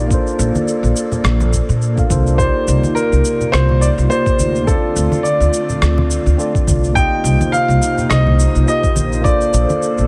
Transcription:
Already playing: upright bass A#1, tine electric piano A#3 D#4 F4 G4 D5, analog synth pad A#3 D5
0.08 tine electric piano A#3 D4 F4, analog synth pad A4, kick, cabasa
0.13 tine electric piano A4 C5
0.27 cabasa
0.39 upright bass A#1, cabasa
0.55 high conga, cabasa
0.68 cabasa
0.83 upright bass A#1, cabasa
0.96 cabasa
1.12 low conga, cabasa
1.24 upright bass A#1, cross-stick, cabasa
1.40 high conga, low conga, cabasa
1.53 kick, cabasa
1.69 upright bass A#2, cabasa
1.82 cabasa
1.96 tine electric piano A#3 D4 F4 A4 F5, kick, cabasa
2.08 upright bass C2, tine electric piano A#3 D4 F4 A4 C5, kick, high conga, cabasa
2.27 cabasa
2.35 analog synth pad C3 D#4 F4, tine electric piano A#3 D#4 F4, grand piano C5, kick
2.39 tine electric piano G4 D5, cabasa
2.68 upright bass C2, cabasa
2.83 high conga, cabasa
2.95 grand piano A#4, cabasa
3.12 upright bass C2, cabasa
3.25 cabasa
3.41 low conga, cabasa
3.52 upright bass C2, grand piano C5, cross-stick, cabasa
3.69 high conga, low conga
3.81 grand piano D5, cabasa
3.98 upright bass C2, cabasa
4.09 tine electric piano A#3 D#4 F4 G4 D5, grand piano C5, cabasa
4.26 kick, cabasa
4.39 upright bass D2, high conga, cabasa
4.55 cabasa
4.65 analog synth pad D3 A3 C4, tine electric piano C4 D4 F4, grand piano A4, kick, cabasa
4.70 tine electric piano A4 D5
4.96 upright bass D2, cabasa
5.12 high conga, cabasa
5.23 grand piano D5, cabasa
5.40 upright bass D2, cabasa
5.53 cabasa
5.69 low conga, cabasa
5.82 upright bass D2, cross-stick, cabasa
5.98 high conga, low conga
6.10 cabasa
6.26 upright bass D2, cabasa
6.37 tine electric piano C4 D4 F4 A4 D5, cabasa
6.55 kick, cabasa
6.67 upright bass C2, kick, high conga, cabasa
6.84 cabasa
6.92 tine electric piano A#3 D#4 F4, analog synth pad A#3, grand piano G5, kick
6.96 analog synth pad C3 D#4 C5, tine electric piano G4 D#5, cabasa
7.24 upright bass C2, cabasa
7.41 high conga, cabasa
7.52 grand piano F5, cabasa
7.68 upright bass C2, cabasa
7.82 cabasa
7.98 low conga, cabasa
8.10 upright bass C2, grand piano D#5, cross-stick, cabasa
8.27 high conga, low conga
8.39 cabasa
8.55 upright bass C2, cabasa
8.66 tine electric piano A#3 D#4 F4 G4 D#5, grand piano D#5, cabasa
8.84 kick, cabasa
8.96 upright bass A#1, high conga, cabasa
9.12 cabasa
9.21 tine electric piano A#3 D4 F4, analog synth pad A#3 A4, grand piano D5, kick
9.25 tine electric piano A4 C5, cabasa
9.41 cabasa
9.54 upright bass A#1, cabasa
9.69 high conga, cabasa
9.82 cabasa
9.98 upright bass A#1, cabasa

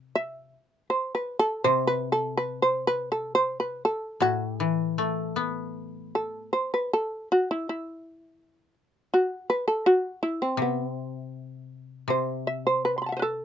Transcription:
Already playing: koto C3
0.15 shamisen E5
0.90 shamisen C5
1.15 shamisen B4
1.39 shamisen A4
1.64 koto C3, shamisen C5
1.87 shamisen B4
2.12 shamisen A4
2.37 shamisen B4
2.62 shamisen C5
2.87 shamisen B4
3.12 shamisen A4
3.35 shamisen C5
3.60 shamisen B4
3.85 shamisen A4
4.20 koto A2, shamisen F#4
4.46 shamisen G4
4.57 koto E3, shamisen G#4
4.69 shamisen A4
4.98 koto A3
5.36 koto B3
6.15 shamisen A4
6.53 shamisen C5
6.74 shamisen B4
6.93 shamisen A4
7.32 shamisen F#4
7.51 shamisen E4
7.69 shamisen E4
9.14 shamisen F#4
9.50 shamisen B4
9.68 shamisen A4
9.86 shamisen F#4
10.23 shamisen E4
10.42 shamisen C4
10.57 koto C3
10.62 shamisen B3
10.88 shamisen C4
12.08 koto C3, shamisen C5
12.47 shamisen E5
12.67 shamisen C5
12.85 shamisen B4
12.98 shamisen C6
13.02 shamisen B5
13.06 shamisen F#5 A5
13.12 shamisen E5
13.17 shamisen B4 C5
13.22 shamisen A4

